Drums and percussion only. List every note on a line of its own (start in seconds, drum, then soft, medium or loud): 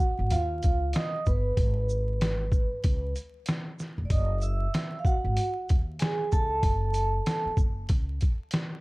0.30 closed hi-hat medium
0.63 kick medium
0.63 closed hi-hat soft
0.63 shaker soft
0.93 snare loud
0.93 closed hi-hat medium
1.26 kick medium
1.26 shaker medium
1.57 kick loud
1.57 closed hi-hat loud
1.89 shaker medium
2.21 snare loud
2.21 closed hi-hat medium
2.52 kick medium
2.52 shaker medium
2.84 kick medium
2.84 closed hi-hat medium
3.16 closed hi-hat soft
3.16 shaker soft
3.46 snare loud
3.46 closed hi-hat medium
3.79 snare soft
3.79 shaker soft
4.10 kick loud
4.10 closed hi-hat loud
4.42 shaker medium
4.74 snare loud
4.74 closed hi-hat medium
5.05 kick loud
5.05 shaker medium
5.37 closed hi-hat medium
5.69 kick medium
5.69 closed hi-hat soft
5.69 shaker soft
5.99 snare loud
5.99 closed hi-hat medium
6.32 kick medium
6.32 shaker medium
6.63 kick loud
6.63 closed hi-hat loud
6.94 closed hi-hat medium
6.94 shaker medium
7.26 snare loud
7.26 closed hi-hat medium
7.57 kick loud
7.57 shaker medium
7.89 kick loud
7.89 closed hi-hat medium
8.21 kick medium
8.21 closed hi-hat soft
8.21 shaker soft
8.51 snare loud
8.51 closed hi-hat medium